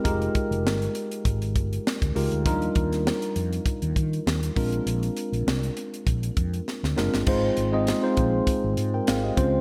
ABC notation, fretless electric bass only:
X:1
M:4/4
L:1/16
Q:"Swing 16ths" 1/4=100
K:Ablyd
V:1 name="Fretless electric bass" clef=bass
F,,,2 z F,,, G,,,2 z2 A,,,2 G,,,2 z D,, _D,, =D,, | E,,2 E,,3 z F,,2 z E,, E,2 E,,2 B,,,2 | B,,,2 z B,,, C,,2 z2 B,,,2 F,,2 z D,, ^F,,, G,,, | A,,,2 A,,,3 z B,,,2 z A,,, A,,2 A,,,2 _D,,2 |]